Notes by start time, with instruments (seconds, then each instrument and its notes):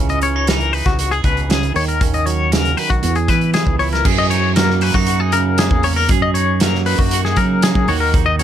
Already playing: fingered electric bass C#2, clean electric guitar C#3 E3 C#4
0.09 clean electric guitar D#5, closed hi-hat
0.22 clean electric guitar C#4 C#5, closed hi-hat
0.36 clean electric guitar D#4
0.47 clean electric guitar E3 A#4, snare, closed hi-hat
0.60 closed hi-hat
0.73 clean electric guitar D#4 B4, open hi-hat
0.86 fingered electric bass C#2, clean electric guitar F#4, kick, snare, closed hi-hat
0.99 clean electric guitar F#4, closed hi-hat
1.11 clean electric guitar G#4, closed hi-hat
1.24 fingered electric bass C#2, clean electric guitar B2 B4, kick, closed hi-hat
1.37 closed hi-hat
1.49 clean electric guitar C#3 G#4, snare, closed hi-hat
1.63 closed hi-hat
1.74 fingered electric bass D#2, clean electric guitar D#3 C#5, open hi-hat
1.88 clean electric guitar A#4, closed hi-hat
2.01 clean electric guitar C#4, kick, closed hi-hat
2.14 clean electric guitar D#5, closed hi-hat
2.26 clean electric guitar F#3 C#5, closed hi-hat
2.52 clean electric guitar C#3 A#4, snare, closed hi-hat
2.65 closed hi-hat
2.77 clean electric guitar D#3 B4, open hi-hat
2.90 fingered electric bass B1, clean electric guitar F#4, kick
3.02 clean electric guitar E2, fingered electric bass E2, closed hi-hat
3.15 clean electric guitar G#4, closed hi-hat
3.28 fingered electric bass E3, clean electric guitar E4 B4, kick, snare, closed hi-hat
3.41 closed hi-hat
3.54 clean electric guitar E3 G#4, snare, closed hi-hat
3.66 fingered electric bass C#2, kick
3.79 clean electric guitar E4 C#5, open hi-hat
3.93 clean electric guitar A#4, snare, closed hi-hat
4.05 clean electric guitar F#2 G#4, fingered electric bass F#2, kick, crash
4.18 clean electric guitar D#5
4.30 clean electric guitar D#4 C#5, closed hi-hat
4.56 clean electric guitar F#3 A#3 A#4, snare, closed hi-hat
4.70 snare
4.81 clean electric guitar C#4 B4, open hi-hat
4.94 fingered electric bass F#2, clean electric guitar D#4 F#4, kick, snare
5.07 clean electric guitar F#4, closed hi-hat
5.20 clean electric guitar G#4
5.32 clean electric guitar C#3 D#4 A#4, closed hi-hat
5.58 clean electric guitar A#3 G#4, snare, closed hi-hat
5.71 fingered electric bass E2, kick
5.83 clean electric guitar C#4 C#5, open hi-hat
5.96 clean electric guitar D#4 A#4
6.09 fingered electric bass F#2, clean electric guitar F#2 G#4, kick, closed hi-hat
6.22 clean electric guitar D#5
6.34 clean electric guitar D#4 C#5, closed hi-hat
6.60 clean electric guitar F#3 A#3 A#4, snare, closed hi-hat
6.75 snare
6.86 clean electric guitar D#4 B4, open hi-hat
6.99 fingered electric bass F#2, clean electric guitar F#4, kick
7.11 clean electric guitar F#4, closed hi-hat
7.25 clean electric guitar G#4, snare
7.36 clean electric guitar C#3 D#4 A#4, fingered electric bass F#3, kick, closed hi-hat
7.62 clean electric guitar A#3 G#4, snare, closed hi-hat
7.75 fingered electric bass F#3, kick
7.88 fingered electric bass D#2, clean electric guitar D#3 F#4 C#5, open hi-hat
8.00 clean electric guitar A#4
8.14 clean electric guitar D#4, kick, closed hi-hat
8.26 clean electric guitar D#5
8.39 clean electric guitar F#3 C#5, closed hi-hat